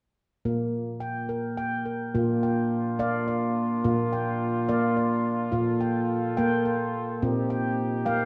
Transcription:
0.45 A#2 A#3
1.00 G5
1.29 A#4
1.57 G5
1.86 A#4
2.13 A#2 A#3 D4 F4
2.43 G5
2.99 A#3 D5 F5
3.28 D5
3.84 A#2 A#3
4.13 G5
4.69 A#3 D5 F5
4.97 D5
5.52 A#2 F4 A4
5.81 G5
6.37 A#3 G5
6.65 G5
7.22 A#2 C4 D#4 G4
7.50 G5
8.06 A#3 F5 G5

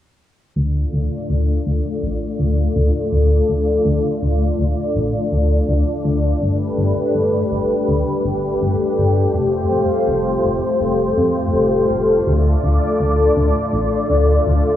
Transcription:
0.56 D2 A3 D4 F4 D5
0.93 D2
1.29 D2
1.66 D2
2.03 A1
2.39 D2
2.76 D2
3.12 D2
3.49 D2
3.85 D2
4.22 D2
4.59 D2
4.95 A1
5.32 D2
5.68 D2
6.05 D2
6.41 G1 A3 G4 B4
6.78 G1
7.15 G1
7.51 G1
7.88 D2
8.25 G1
8.61 G1
8.97 G1
9.34 F1 F4 C5
9.71 F1
10.07 F1
10.44 F1
10.81 F1
11.17 F2
11.54 F1
11.90 F1
12.27 D2 D4 D5
12.63 D2
13.00 D2
13.37 D2
13.73 A1
14.10 D2
14.46 D2

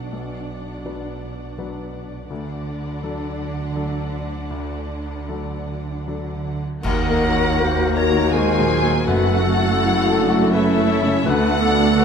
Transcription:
Already playing: B1 B2 F#3 D4 B4 D5 F#5
0.12 B1
0.85 F#3 D4 B4
1.58 F#3 D4 B4
2.30 D2 D3 D4 D5 F#5
3.03 F#3 D4 A4
3.76 F#3 D4 A4
4.51 D2
5.29 F#3 D4 A4
6.07 F#3 D4 A4
6.82 D#2 A#3 D#4 F#4 A#4 F#5, concert bass drum, crash
7.10 A#3
7.24 C#5
7.35 F#4
7.59 A#3 F#4 C5
7.85 A#4
7.96 A#4 C#5 A#5
8.10 F#4
8.32 G#3 A#3 G#4 C5 G#5
8.59 A#2
8.71 F#3
8.83 A#3
9.06 F#1 F#2 A3 E4 F#4 A4 B4 F#5
9.33 A3
9.44 A4
9.57 E4
9.81 E4 F#4
10.07 A4
10.17 D4
10.30 F#4
10.53 C#4 E4 A4 B4 E5
10.78 A3
10.89 C#4 C#5
11.02 C#3
11.25 D2 A3 D4 F#4 A4 B4 F#5
11.50 A3
11.61 B3 A4
11.75 D4
11.98 D4 F#4 B4

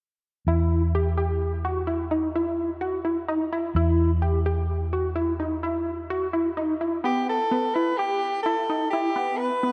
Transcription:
0.47 E2 E4
0.95 G4
1.17 G4
1.65 F#4
1.87 E4
2.11 D#4
2.35 E4
2.81 F#4
3.05 E4
3.28 D#4
3.52 E4
3.75 E2 E4
4.22 G4
4.46 G4
4.93 F#4
5.16 E4
5.40 D#4
5.63 E4
6.10 F#4
6.33 E4
6.57 D#4
6.81 E4
7.04 B3 G4
7.29 A4
7.51 B3
7.74 E4 B4
7.98 G4
8.43 E4 A4
8.70 D#4
8.90 E4 G4
9.16 B3
9.37 B4
9.63 B3

